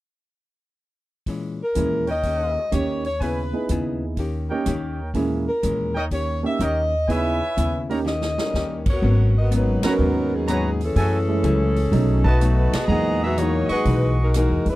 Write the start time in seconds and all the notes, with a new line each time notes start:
1.26 A#2 E3 G#3 C#4, kick, open hi-hat
1.63 A#4
1.75 D#2 A#2 E3 G#3 A#3 C#4 E4 G#4, closed hi-hat
2.07 D#4 A#4 C#5 G5, open hi-hat
2.11 D#5
2.23 D#3 A#3 C#4 G4, kick, open hi-hat
2.72 D#2 D#3 A#3 C#4 D#4 G4 C#5, cross-stick, closed hi-hat
3.05 C#5, open hi-hat
3.20 C#3 B3 E4 G#4 B4 C#5 G#5, kick, open hi-hat
3.53 B3 D#4 E4 G#4
3.69 D#2 C#3 B3 E4 G#4, closed hi-hat
4.17 D#3 A#3 C#4 G4, kick, open hi-hat
4.50 A#3 C#4 D#4 G4 A#4 C#5 G5
4.66 D#2 D#3 A#3 C#4 G4, cross-stick, closed hi-hat
5.14 A#2 E3 G#3 A#3 C#4 E4 G#4, kick, open hi-hat
5.48 A#4
5.63 D#2 A#2 E3 G#3 C#4, closed hi-hat
5.95 D#4 A#4 C#5 D#5 G5
6.11 D#3 A#3 C#4 G4 C#5, kick, open hi-hat
6.43 A#3 C#4 D#4 G4 E5
6.59 D#2 D#3 A#3 C#4 D#4 G4 A#4 C#5 D#5 G5, cross-stick, closed hi-hat
7.08 C#3 B3 D#4 E4 G#4 B4 C#5 E5 G#5, kick, open hi-hat
7.57 D#2 C#3 B3 E4 G#4, closed hi-hat
7.89 A#3 C#4 D#4 G4 A#4 C#5 A#5, open hi-hat
8.05 D#3 A#3 C#4 G4 D#5, snare
8.22 snare
8.38 G3 C#4 D#4 A#4, snare
8.54 D#2 D#3 A#3 C#4 G4, snare
8.86 kick, crash
8.90 B3 F#4 A#4 C#5
9.02 G#1 G#2 F#3 B3 C#4, kick
9.38 B3 F#4 A#4 D#5
9.51 G#2 F#3 B3 C#4, closed hi-hat
9.56 F#3 A#3 D#4 B4
9.83 F#3 B3 C#4 D#4 F#4 A#4 B4 C#5 A#5, muted upright bass stroke, snare, ride
9.99 D#2 G#2 F#3 B3 C#4
10.34 F#3 B3 D#4 G#4
10.47 G#2 F#3 B3 C#4 F#4 B4 C#5 A#5, cross-stick, closed hi-hat
10.51 F#3 D#4 G#4
10.81 E3 C#4 G#4 A4, open hi-hat
10.96 F#2 F#3 A3 E4 F#4 G#4 A4 E5 G#5, kick, open hi-hat
11.28 G#3 A3 C#4 E4
11.43 C#2 F#3 A3 E4 G#4, closed hi-hat
11.76 open hi-hat
11.91 B1 B2 F#3 A3 C#4 D#4, kick, open hi-hat
12.25 A3 D#4 F#4 B4 D#5 A5, kick
12.41 B2 F#3 A3 D#4, cross-stick, closed hi-hat
12.73 B3 F#4 G#4 D#5, muted upright bass stroke, snare, ride
12.88 E2 A#2 E3 F#3 G#3 A#3 D#4 G#4 D#5 F#5 A#5
12.92 D#4 G#4
13.24 B3 F#4 G#4 E5
13.38 E3 A#3 D#4 F#4 G#4 C#5, closed hi-hat
13.69 G#3 D#4 F#4 G#4 B4 D#5 F#5 C#6, muted upright bass stroke, open hi-hat
13.85 B1 E3 A#3 D#4 G#4, kick, open hi-hat
14.22 G#3 D#4 F#4 A#4
14.34 E3 G#3 A#3 D#4 F#4 G#4 A#4, cross-stick, closed hi-hat
14.49 E2
14.66 D#2 E4, open hi-hat
14.70 G#3 D4 B4